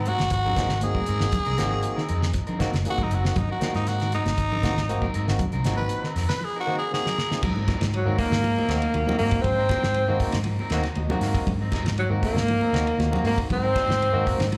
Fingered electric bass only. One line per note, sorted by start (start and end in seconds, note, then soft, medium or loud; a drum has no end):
0.21 0.30 G#1 medium
0.31 0.51 G#1 medium
0.57 0.87 G#1 medium
1.09 1.19 G#2 medium
1.22 1.31 G#1 medium
1.47 1.57 C2 medium
1.60 1.79 G#1 medium
2.10 2.30 F2 medium
2.60 muted fingered electric bass stroke soft
2.74 2.83 F#1 medium
2.98 3.11 G#1 medium
3.11 3.31 F#1 medium
3.36 3.46 G#1 medium
3.61 muted fingered electric bass stroke soft
3.75 4.15 G#2 medium
4.26 4.35 G#1 medium
4.38 4.58 G#1 medium
4.63 4.94 G#1 medium
5.15 5.25 G#2 medium
5.29 5.38 G#1 medium
5.54 5.63 C2 medium
5.65 5.85 G#1 medium
6.16 6.26 F2 medium
7.43 7.63 G#2 loud
7.81 8.01 G#2 medium
8.06 8.16 G#2 medium
8.31 8.51 G#2 loud
8.69 8.79 D#2 medium
8.94 9.05 D#2 loud
9.07 muted fingered electric bass stroke soft
9.20 9.30 G#2 medium
9.44 9.65 G#2 loud
9.85 10.04 G#2 medium
10.09 10.19 G#2 medium
10.34 10.54 G#2 loud
10.71 10.81 D#2 medium
10.96 11.07 D#2 loud
11.09 muted fingered electric bass stroke soft
11.21 11.32 G#2 medium
11.47 11.67 G#2 loud
11.83 12.04 G#2 medium
12.10 12.20 G#2 medium
12.35 12.55 G#2 loud
12.73 12.84 D#2 loud
12.99 13.09 D#2 loud
13.12 muted fingered electric bass stroke soft
13.24 13.35 G#2 medium
13.50 13.70 G#2 loud
13.88 14.08 G#2 loud
14.14 14.24 G#2 medium
14.39 14.57 G#2 medium